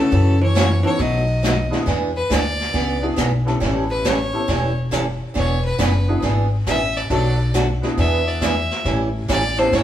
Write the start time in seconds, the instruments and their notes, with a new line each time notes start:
Already playing: honky-tonk piano A3 C#4 E4
0.00 hollow-body jazz guitar C#3, honky-tonk piano F#4 A4, fiddle A4
0.11 upright bass F#2, steel-string acoustic guitar C#3 E3 A3 C#4 F#4, brush sweep, kick
0.41 hollow-body jazz guitar E3, fiddle C#5
0.55 steel-string acoustic guitar C#3 E3 A3 C#4 F#4, snare, hi-hat pedal
0.83 hollow-body jazz guitar E3, honky-tonk piano B3 C#4 D#4 F#4 A4, fiddle C#5
0.99 upright bass B1, steel-string acoustic guitar B2 F#3 A3 D#4 F#4, hollow-body jazz guitar F#3, fiddle D#5, brush sweep, kick
1.43 steel-string acoustic guitar B2 F#3 A3 D#4 F#4, snare, hi-hat pedal
1.70 honky-tonk piano B3 D4 E4 F#4 G#4, snare
1.86 upright bass E2, steel-string acoustic guitar E3 B3 D4 G#4, brush sweep, kick, snare
2.17 fiddle B4
2.30 upright bass D2, steel-string acoustic guitar E3 B3 D4 G#4, fiddle D5, kick, snare, hi-hat pedal
2.60 snare
2.73 upright bass C#2, steel-string acoustic guitar E3 B3 D4 G#4, brush sweep, kick, snare
3.01 honky-tonk piano B3 D4 E4 F#4 G#4
3.16 upright bass B1, steel-string acoustic guitar E3 B3 D4 G#4, kick, snare, hi-hat pedal
3.45 honky-tonk piano B3 C#4 E4 G4 A4, snare
3.60 upright bass A1, steel-string acoustic guitar E3 G3 C#4 E4 A4, brush sweep, kick, snare
3.90 fiddle B4
4.05 steel-string acoustic guitar E3 G3 C#4 E4 A4, fiddle C#5, kick, snare, hi-hat pedal
4.33 honky-tonk piano B3 C#4 E4 G4 A4
4.48 upright bass E1, steel-string acoustic guitar E3 G3 C#4 E4 A4, brush sweep, kick, snare
4.91 steel-string acoustic guitar E3 G3 C#4 E4 A4, kick, snare, hi-hat pedal
5.34 upright bass E1, steel-string acoustic guitar E3 B3 D4 G#4, fiddle C#5, brush sweep, kick, snare
5.65 fiddle B4
5.78 upright bass F#1, steel-string acoustic guitar E3 B3 D4 G#4, fiddle B4, kick, snare, hi-hat pedal
6.08 honky-tonk piano B3 D4 E4 F#4 G#4
6.22 upright bass G#1, steel-string acoustic guitar E3 B3 D4 G#4, brush sweep, kick, snare
6.67 upright bass A1, steel-string acoustic guitar E3 B3 D4 G#4, fiddle E5, kick, snare, hi-hat pedal
6.96 fiddle D5, snare
7.10 upright bass B1, steel-string acoustic guitar B2 F#3 A3 D4 F#4, honky-tonk piano A3 B3 D4 F#4 A4, fiddle D5, brush sweep, kick, snare
7.54 steel-string acoustic guitar B2 F#3 A3 D4 F#4, kick, snare, hi-hat pedal
7.82 honky-tonk piano B3 D4 E4 F#4 G#4, snare
7.97 upright bass E2, steel-string acoustic guitar E3 B3 D4 G#4, fiddle E5, brush sweep, kick, snare
8.28 fiddle D5
8.41 steel-string acoustic guitar E3 B3 D4 G#4, fiddle E5, kick, snare, hi-hat pedal
8.71 snare
8.85 upright bass A1, steel-string acoustic guitar E3 G3 C#4 E4 A4, brush sweep, kick, snare
9.28 upright bass A1, steel-string acoustic guitar E3 G3 C#4 E4 A4, fiddle D5, kick, snare, hi-hat pedal
9.57 honky-tonk piano B3 C#4 E4 G4 A4, fiddle C5, snare
9.72 upright bass G1, steel-string acoustic guitar E3 G3 C#4 E4 A4, fiddle C#5, brush sweep, kick, snare